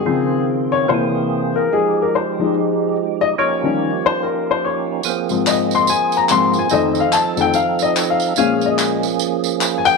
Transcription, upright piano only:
0.00 0.43 G#4 loud
0.05 0.85 C#3 medium
0.05 0.85 F3 soft
0.05 0.85 C4 medium
0.72 0.89 C#5 medium
0.88 1.51 C3 soft
0.88 1.52 E3 soft
0.88 1.52 A#3 soft
0.88 1.57 C5 medium
1.56 1.73 A#4 medium
1.73 2.01 G#4 medium
2.02 2.14 A#4 medium
2.15 2.53 C5 medium
2.39 2.94 F3 soft
2.39 2.95 G#3 soft
2.39 2.95 D#4 medium
3.21 3.26 D#5 medium
3.39 4.07 C#5 medium
3.63 3.89 D#3 soft
3.63 3.89 G3 soft
3.63 3.89 C#4 medium
4.06 4.23 C5 medium
4.23 4.51 A#4 medium
4.51 4.64 C5 medium
4.65 5.03 C#5 medium
5.30 5.85 G#2 soft
5.30 5.86 F3 soft
5.30 5.86 C4 soft
5.47 5.75 D#5 medium
5.75 5.89 C6 medium
5.89 6.15 G#5 medium
6.17 6.22 A#5 medium
6.31 6.52 G#2 soft
6.31 6.53 F3 soft
6.31 6.53 C4 medium
6.31 6.59 C6 loud
6.59 6.72 G#5 medium
6.71 7.01 F2 medium
6.71 7.01 D#3 medium
6.71 7.02 A3 medium
6.71 7.01 D#5 medium
7.00 7.12 F5 medium
7.13 7.39 A5 medium
7.36 7.52 F2 soft
7.36 7.52 D#3 soft
7.36 7.53 A3 soft
7.41 7.55 G5 medium
7.55 7.80 F5 medium
7.82 8.11 D#5 medium
8.10 8.36 F5 medium
8.36 9.00 A#2 medium
8.36 9.00 G#3 medium
8.36 9.00 C#4 medium
8.36 8.66 F5 medium
8.66 8.86 D#5 medium
9.78 9.86 G#5 medium
9.85 9.97 G5 loud

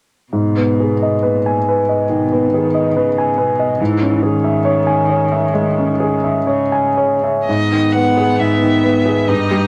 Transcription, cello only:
0.33 1.24 B2 soft
1.23 1.68 A#2 soft
1.67 2.11 G#2 soft
2.10 2.55 B2 soft
2.53 2.97 D#3 soft
2.96 3.40 C#3 soft
3.39 3.82 B2 soft
3.80 4.24 E3 soft
4.23 6.45 D#3 soft
6.46 7.24 C#3 soft
9.30 9.67 G4 soft

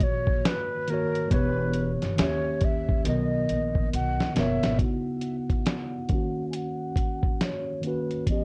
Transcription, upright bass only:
0.00 0.41 A#1 medium
1.31 1.98 E1 loud
2.03 2.18 G1 medium
2.19 3.02 D#2 medium
3.06 3.46 B1 loud
3.50 3.90 A#1 medium
3.94 4.18 B1 loud
4.37 4.62 F#1 medium
4.64 4.79 G#1 medium

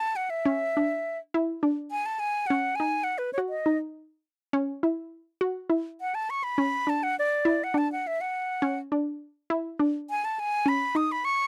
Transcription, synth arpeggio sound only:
0.45 0.64 C#4 loud
0.77 1.13 D4 medium
1.34 1.53 E4 medium
1.63 1.99 D4 medium
2.50 2.69 C#4 medium
2.80 3.16 D#4 medium
3.38 3.56 F#4 medium
3.66 4.03 D#4 medium
4.53 4.72 C#4 loud
4.83 5.20 E4 medium
5.41 5.60 F#4 medium
5.70 6.07 E4 medium
6.58 6.76 C#4 medium
6.87 7.24 D4 medium
7.45 7.64 E4 medium
7.74 8.11 D4 medium
8.62 8.81 C#4 loud
8.92 9.28 D4 medium
9.50 9.68 E4 medium
9.79 10.16 D4 medium
10.66 10.84 C#4 medium
10.95 11.32 D#4 medium

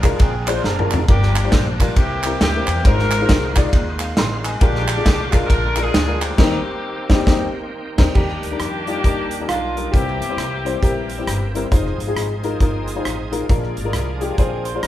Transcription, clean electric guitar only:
0.21 0.47 C4 medium
0.21 0.47 G#4 medium
0.49 0.64 C5 medium
0.65 1.07 D4 medium
0.65 1.07 A#4 medium
14.39 14.65 C4 medium
14.39 14.64 G#4 medium
14.65 14.82 C5 medium
14.83 14.87 A#4 medium

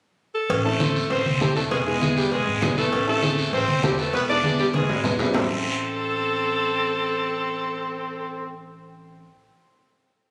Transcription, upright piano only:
0.65 0.70 C4 medium
0.65 0.70 E4 medium
0.65 0.70 A4 medium
0.80 1.01 C4 medium
0.80 1.02 E4 medium
0.80 1.02 C5 medium
1.41 1.46 C4 medium
1.41 1.46 E4 medium
1.41 1.46 A4 medium
1.56 1.67 C4 medium
1.56 1.67 E4 medium
1.56 1.67 A4 medium
1.86 1.92 B3 medium
1.86 1.92 E4 medium
1.86 1.92 G#4 medium
2.01 2.23 B3 medium
2.01 2.23 E4 medium
2.01 2.23 G#4 medium
2.61 2.67 B3 medium
2.61 2.67 E4 medium
2.61 2.67 G#4 medium
2.77 2.88 B3 medium
2.77 2.88 E4 medium
2.77 2.88 B4 medium
3.07 3.12 C4 medium
3.07 3.13 E4 medium
3.07 3.13 A4 medium
3.22 3.44 C4 medium
3.22 3.44 E4 medium
3.22 3.44 G#4 medium
3.83 3.88 C4 medium
3.83 3.89 E4 medium
3.83 3.89 A4 medium
3.98 4.09 C4 medium
3.98 4.09 E4 medium
3.98 4.09 B4 medium
4.28 4.34 B3 medium
4.28 4.34 E4 medium
4.28 4.34 G#4 medium
4.44 4.65 B3 medium
4.44 4.65 E4 medium
4.44 4.65 G#4 medium
5.04 5.09 B3 medium
5.04 5.09 E4 medium
5.04 5.10 B4 medium
5.19 5.30 B3 medium
5.19 5.30 E4 medium
5.19 5.30 G#4 medium
5.33 9.21 C4 medium
5.33 9.22 E4 medium
5.33 9.23 A4 medium

